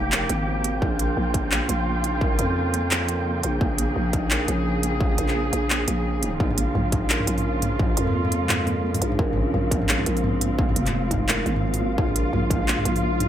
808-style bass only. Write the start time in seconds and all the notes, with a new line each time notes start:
Already playing: F1
0.30 G#1
0.82 A#1
1.17 A#1
1.69 A#1
2.39 F2
3.44 A#1
3.61 A#1
3.96 A#1
4.48 A#1
5.18 A#1
5.53 A#1
5.88 A#1
6.40 A#1
6.75 A#1
7.27 A#1
7.97 F2
9.02 A#1
9.19 A#1
9.54 A#1
10.06 A#1
10.76 F1
11.46 G#1
11.98 A#1
12.33 A#1
12.85 A#1